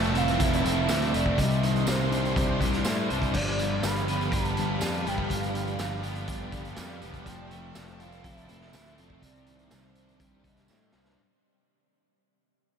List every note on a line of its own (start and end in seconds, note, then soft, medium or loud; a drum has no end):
0.00 0.36 F1 loud
0.00 0.64 F3 medium
0.00 0.90 F3 medium
0.00 0.63 A3 medium
0.00 0.65 A3 medium
0.00 0.87 A3 medium
0.00 1.36 E5 medium
0.00 1.37 A5 medium
0.00 closed hi-hat medium
0.14 0.87 C4 medium
0.14 0.63 C4 medium
0.14 0.89 E4 medium
0.14 0.43 F5 loud
0.14 closed hi-hat medium
0.28 closed hi-hat medium
0.39 0.63 F1 loud
0.39 1.14 C4 medium
0.39 1.37 E4 medium
0.39 1.38 E4 medium
0.39 1.17 E5 loud
0.39 kick loud
0.39 closed hi-hat loud
0.53 closed hi-hat medium
0.64 0.88 F1 medium
0.64 1.12 A3 medium
0.64 1.39 A3 medium
0.64 1.12 C4 medium
0.64 closed hi-hat medium
0.88 1.12 D2 loud
0.88 1.38 A3 medium
0.88 1.37 C4 medium
0.88 1.39 E4 medium
0.88 snare loud
0.88 closed hi-hat loud
0.88 tambourine medium
1.02 closed hi-hat medium
1.13 1.40 F1 medium
1.13 1.37 A3 medium
1.13 1.38 C4 medium
1.13 1.39 C4 medium
1.13 1.41 D5 loud
1.13 closed hi-hat medium
1.26 kick medium
1.37 1.83 C2 loud
1.37 2.60 C3 medium
1.37 2.61 C3 medium
1.37 1.62 G3 medium
1.37 3.33 C5 medium
1.37 1.90 D#5 loud
1.37 3.33 C6 medium
1.37 kick loud
1.37 closed hi-hat loud
1.50 closed hi-hat medium
1.62 2.85 D#3 medium
1.62 2.86 D#3 medium
1.62 1.87 G3 medium
1.62 closed hi-hat medium
1.76 closed hi-hat soft
1.86 2.32 C2 medium
1.86 2.84 G3 medium
1.86 2.61 G3 medium
1.86 3.10 C5 medium
1.86 snare loud
1.86 closed hi-hat loud
1.86 tambourine loud
2.10 2.59 D4 medium
2.10 2.84 D4 medium
2.10 2.85 G4 medium
2.10 closed hi-hat medium
2.25 closed hi-hat soft
2.34 2.59 C2 loud
2.34 3.10 D4 medium
2.34 4.31 G4 medium
2.34 kick loud
2.34 closed hi-hat loud
2.60 2.83 C2 medium
2.60 3.62 G3 medium
2.60 3.09 G3 medium
2.60 3.07 D4 medium
2.60 kick medium
2.60 closed hi-hat medium
2.73 snare soft
2.73 closed hi-hat medium
2.85 3.08 A2 loud
2.85 3.82 G3 medium
2.85 4.07 D4 medium
2.85 3.62 G4 medium
2.85 snare loud
2.85 closed hi-hat loud
2.85 tambourine loud
3.08 3.33 C2 medium
3.08 3.34 G3 medium
3.08 4.07 D4 medium
3.08 4.33 D4 medium
3.08 closed hi-hat medium
3.22 kick loud
3.22 closed hi-hat medium
3.33 3.79 G1 loud
3.33 4.56 G2 medium
3.33 4.57 G2 medium
3.33 3.58 F3 medium
3.33 7.23 G4 medium
3.33 3.86 D5 loud
3.33 5.29 F5 medium
3.33 7.23 B5 medium
3.33 kick loud
3.33 crash loud
3.58 4.81 D3 medium
3.58 3.83 F3 medium
3.58 4.85 F3 medium
3.58 closed hi-hat medium
3.83 4.28 G1 loud
3.83 4.56 F3 medium
3.83 4.80 G3 medium
3.83 4.57 G3 medium
3.83 4.35 B5 loud
3.83 snare loud
3.83 closed hi-hat loud
3.83 tambourine loud
3.96 closed hi-hat medium
4.07 4.55 B3 medium
4.07 4.80 B3 medium
4.07 4.80 G4 medium
4.07 closed hi-hat medium
4.21 closed hi-hat soft
4.31 4.55 G1 loud
4.31 5.04 B3 medium
4.31 5.54 D4 medium
4.31 5.54 G4 medium
4.31 5.08 A5 loud
4.31 kick loud
4.31 closed hi-hat loud
4.45 closed hi-hat medium
4.56 4.80 G1 loud
4.56 5.05 F3 medium
4.56 5.77 G3 medium
4.56 5.04 B3 medium
4.56 closed hi-hat medium
4.81 5.04 F2 loud
4.81 5.77 G3 medium
4.81 6.03 B3 medium
4.81 6.01 G4 medium
4.81 snare loud
4.81 closed hi-hat loud
4.81 tambourine loud
4.94 closed hi-hat medium
5.05 5.29 G1 medium
5.05 5.30 F3 medium
5.05 6.02 B3 medium
5.05 6.25 B3 medium
5.05 5.31 G5 loud
5.05 closed hi-hat medium
5.18 kick loud
5.30 5.75 G1 loud
5.30 6.52 G2 medium
5.30 6.53 G2 medium
5.30 5.54 F3 medium
5.30 9.19 D5 medium
5.30 6.74 F5 loud
5.30 kick loud
5.30 closed hi-hat loud
5.43 closed hi-hat medium
5.54 6.77 D3 medium
5.54 6.77 F3 medium
5.54 5.79 F3 medium
5.54 closed hi-hat medium
5.67 closed hi-hat soft
5.78 6.25 G1 medium
5.78 6.51 F3 medium
5.78 6.76 G3 medium
5.78 6.51 G3 medium
5.78 snare loud
5.78 closed hi-hat loud
5.78 tambourine loud
6.02 6.51 B3 medium
6.02 6.75 B3 medium
6.02 6.77 G4 medium
6.02 closed hi-hat medium
6.15 closed hi-hat soft
6.26 6.51 G1 loud
6.26 7.02 B3 medium
6.26 7.26 D4 medium
6.26 7.26 G4 medium
6.26 kick loud
6.26 closed hi-hat loud
6.52 6.75 G1 medium
6.52 7.00 F3 medium
6.52 7.26 G3 medium
6.52 7.00 B3 medium
6.52 kick medium
6.52 closed hi-hat medium
6.65 closed hi-hat soft
6.76 7.00 F2 loud
6.76 7.26 G3 medium
6.76 7.25 B3 medium
6.76 7.26 G4 medium
6.76 snare loud
6.76 closed hi-hat loud
6.76 tambourine loud
7.01 7.25 E1 loud
7.01 7.26 F3 medium
7.01 7.26 B3 medium
7.01 7.27 B3 medium
7.01 closed hi-hat medium
7.14 kick medium
7.14 closed hi-hat medium
7.25 7.71 F1 loud
7.25 8.48 F3 medium
7.25 9.20 F3 medium
7.25 7.51 F3 medium
7.25 7.50 C4 medium
7.25 7.72 G5 loud
7.25 9.20 A5 medium
7.25 kick loud
7.25 closed hi-hat loud
7.50 8.74 F3 medium
7.50 7.75 A3 medium
7.50 7.74 C4 medium
7.50 closed hi-hat medium
7.74 8.21 F1 loud
7.74 8.49 A3 medium
7.74 8.71 A3 medium
7.74 8.48 C4 medium
7.74 snare loud
7.74 closed hi-hat loud
7.74 tambourine loud
7.88 closed hi-hat soft
7.99 8.49 C4 medium
7.99 8.72 E4 medium
7.99 8.73 E4 medium
7.99 8.25 F5 loud
7.99 closed hi-hat medium
8.12 closed hi-hat soft
8.23 8.47 F1 loud
8.23 8.99 C4 medium
8.23 9.22 E4 medium
8.23 9.22 A4 medium
8.23 9.24 E5 loud
8.23 kick loud
8.23 closed hi-hat loud
8.37 closed hi-hat medium
8.49 8.72 F1 medium
8.49 9.23 A3 medium
8.49 8.98 C4 medium
8.49 8.97 C4 medium
8.49 closed hi-hat medium
8.62 snare soft
8.73 8.96 D2 loud
8.73 9.22 A3 medium
8.73 9.22 E4 medium
8.73 snare loud
8.73 closed hi-hat loud
8.73 tambourine loud
8.86 closed hi-hat medium
8.97 9.21 F1 medium
8.97 9.96 C4 medium
8.97 10.69 C4 medium
8.97 10.20 C4 medium
8.97 closed hi-hat medium
9.10 kick medium
9.22 9.67 C2 loud
9.22 10.44 C3 medium
9.22 9.46 G3 medium
9.22 11.16 C5 medium
9.22 9.75 D5 loud
9.22 11.16 C6 medium
9.22 kick loud
9.22 closed hi-hat loud
9.35 closed hi-hat medium
9.46 10.69 D#3 medium
9.46 9.70 G3 medium
9.46 closed hi-hat medium
9.59 closed hi-hat soft
9.71 10.17 C2 loud
9.71 10.43 G3 medium
9.71 10.68 G3 medium
9.71 10.43 G3 medium
9.71 10.23 C5 loud
9.71 snare loud
9.71 closed hi-hat loud
9.71 tambourine loud
9.95 10.44 D4 medium
9.95 10.67 G4 medium
9.95 closed hi-hat medium
10.08 closed hi-hat medium
10.20 10.42 C2 loud
10.20 10.92 D4 medium
10.20 11.18 G4 medium
10.20 10.49 D5 loud
10.20 kick loud
10.20 closed hi-hat loud
10.44 10.67 C2 loud
10.44 10.93 G3 medium
10.44 11.18 G3 medium
10.44 10.92 D4 medium
10.44 10.95 D#5 medium
10.44 kick medium
10.44 closed hi-hat medium
10.57 snare soft
10.57 closed hi-hat medium
10.68 10.92 A2 loud
10.68 11.18 G3 medium
10.68 11.18 D4 medium
10.68 11.17 G4 medium
10.68 snare medium
10.68 tambourine medium
10.92 11.16 C2 medium
10.92 11.18 G3 medium
10.92 11.18 D4 medium
10.92 snare loud
11.05 snare medium